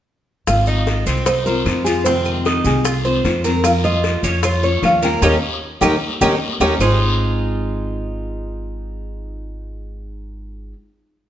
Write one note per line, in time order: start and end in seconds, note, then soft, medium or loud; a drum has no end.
0.47 1.03 G#1 medium
0.47 1.26 G#3 medium
0.47 1.27 C4 medium
0.47 1.27 F4 medium
0.47 0.66 F5 medium
0.47 high bongo medium
0.47 long guiro medium
0.47 claves medium
0.47 maracas medium
0.66 1.06 D#4 medium
0.66 1.26 D#5 loud
0.66 high bongo soft
0.66 maracas soft
0.86 high bongo medium
0.86 short guiro medium
0.86 maracas soft
1.06 1.62 C2 medium
1.06 1.26 C4 medium
1.06 high bongo soft
1.06 short guiro medium
1.06 maracas medium
1.26 1.46 D#4 medium
1.26 1.45 C5 medium
1.26 muted steel-string acoustic guitar stroke medium
1.26 high bongo medium
1.26 long guiro medium
1.26 claves medium
1.26 maracas medium
1.46 1.67 C4 medium
1.46 1.66 F4 medium
1.46 1.83 A#4 medium
1.46 1.85 C5 medium
1.46 high bongo soft
1.46 maracas soft
1.65 2.59 F2 medium
1.65 1.85 G#3 soft
1.65 1.86 C4 medium
1.65 1.85 F4 medium
1.65 high bongo soft
1.65 low bongo medium
1.65 short guiro medium
1.65 claves medium
1.65 maracas soft
1.85 2.06 C4 medium
1.85 2.05 F4 medium
1.85 2.04 G#4 medium
1.85 short guiro medium
1.85 maracas medium
2.04 2.84 C3 medium
2.04 2.84 D#3 medium
2.04 2.84 G#3 medium
2.04 2.44 C4 medium
2.04 2.85 C4 medium
2.04 2.86 F4 medium
2.04 2.25 C5 medium
2.04 high bongo medium
2.04 long guiro medium
2.04 maracas medium
2.25 2.66 A#4 medium
2.25 high bongo soft
2.25 claves medium
2.25 maracas soft
2.45 2.84 D#4 medium
2.45 high bongo medium
2.45 short guiro medium
2.45 maracas soft
2.64 3.20 C2 medium
2.64 3.03 G#4 medium
2.64 high bongo soft
2.64 short guiro medium
2.64 maracas medium
2.85 3.04 F4 medium
2.85 muted steel-string acoustic guitar stroke medium
2.85 high bongo medium
2.85 long guiro medium
2.85 claves medium
2.85 maracas medium
3.04 3.23 D#3 medium
3.04 3.24 G#3 medium
3.04 3.24 C4 medium
3.04 3.24 F4 medium
3.04 3.43 C5 medium
3.04 high bongo soft
3.04 maracas soft
3.24 4.17 F2 medium
3.24 3.43 D#3 medium
3.24 3.44 G#3 medium
3.24 3.44 C4 medium
3.24 3.43 F4 medium
3.24 high bongo soft
3.24 low bongo medium
3.24 short guiro medium
3.24 maracas soft
3.44 3.63 D#3 medium
3.44 3.64 G#3 medium
3.44 3.64 C4 medium
3.44 3.63 F4 medium
3.44 3.83 A#4 medium
3.44 short guiro medium
3.44 maracas medium
3.64 4.42 F3 medium
3.64 4.44 A#3 medium
3.64 4.44 C#4 medium
3.64 4.43 F4 medium
3.64 3.70 F5 medium
3.64 high bongo medium
3.64 long guiro medium
3.64 claves medium
3.64 maracas medium
3.84 4.22 F4 medium
3.84 4.21 D#5 medium
3.84 high bongo soft
3.84 maracas soft
4.04 high bongo medium
4.04 short guiro medium
4.04 maracas soft
4.23 4.79 F2 medium
4.23 4.43 C#4 medium
4.23 high bongo soft
4.23 short guiro medium
4.23 maracas medium
4.43 4.63 F4 medium
4.43 4.85 C#5 medium
4.43 muted steel-string acoustic guitar stroke medium
4.43 high bongo medium
4.43 long guiro medium
4.43 claves medium
4.43 maracas medium
4.63 4.82 A#3 medium
4.63 4.83 C#4 medium
4.63 4.82 F4 medium
4.63 5.02 C#5 medium
4.63 high bongo soft
4.63 maracas soft
4.82 5.19 D#2 medium
4.82 5.02 F3 soft
4.82 5.02 A#3 soft
4.82 5.02 C#4 medium
4.82 5.01 F4 soft
4.82 5.04 F5 medium
4.82 high bongo soft
4.82 low bongo medium
4.82 short guiro medium
4.82 claves medium
4.82 maracas soft
5.02 5.21 A#3 medium
5.02 5.21 C#4 medium
5.02 5.21 F4 medium
5.02 5.22 A#4 medium
5.02 5.22 G5 medium
5.02 short guiro medium
5.02 maracas medium
5.22 5.37 D#2 medium
5.22 5.35 A#3 medium
5.22 5.35 C#4 medium
5.22 5.35 D#4 medium
5.22 5.35 G4 medium
5.22 5.36 A#4 medium
5.22 5.36 C#5 medium
5.22 5.36 D#5 medium
5.22 high bongo medium
5.22 long guiro medium
5.22 claves medium
5.22 maracas loud
5.81 5.96 D#2 medium
5.81 5.94 A#3 medium
5.81 5.94 C#4 medium
5.81 5.94 D#4 medium
5.81 5.94 G4 medium
5.81 5.96 A#4 medium
5.81 5.96 C#5 medium
5.81 5.96 D#5 medium
5.81 high bongo medium
5.81 long guiro medium
5.81 claves loud
5.81 maracas loud
6.21 6.36 D#2 medium
6.21 6.34 A#3 medium
6.21 6.34 C#4 medium
6.21 6.34 D#4 medium
6.21 6.34 G4 medium
6.21 6.35 A#4 medium
6.21 6.35 C#5 medium
6.21 6.35 D#5 medium
6.21 high bongo medium
6.21 long guiro medium
6.21 claves medium
6.21 maracas medium
6.60 6.75 D#2 medium
6.60 6.73 A#3 medium
6.60 6.73 C#4 loud
6.60 6.74 C#4 medium
6.60 6.73 D#4 medium
6.60 6.74 D#4 medium
6.60 6.73 G4 medium
6.60 6.74 A#4 medium
6.60 6.74 C#5 medium
6.60 6.74 D#5 medium
6.60 high bongo medium
6.60 long guiro medium
6.60 claves medium
6.60 maracas medium
6.79 10.71 G#1 medium
6.79 10.76 G#3 medium
6.79 10.73 G#3 medium
6.79 10.78 C4 medium
6.79 10.73 D#4 medium
6.79 10.74 F4 medium
6.79 10.79 F4 medium
6.79 10.73 C5 medium
6.79 low bongo medium
6.79 long guiro loud
6.79 claves medium
6.79 maracas medium